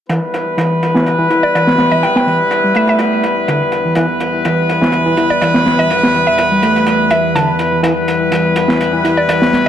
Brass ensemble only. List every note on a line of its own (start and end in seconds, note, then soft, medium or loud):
0.09 3.94 G3 medium
0.09 3.94 B3 medium
0.09 3.94 E4 medium
0.09 3.94 B4 medium
3.96 7.81 G3 medium
3.96 7.81 B3 medium
3.96 7.81 E4 medium
3.96 7.81 B4 medium
7.84 9.69 G3 medium
7.84 9.69 B3 medium
7.84 9.69 E4 medium
7.84 9.69 B4 medium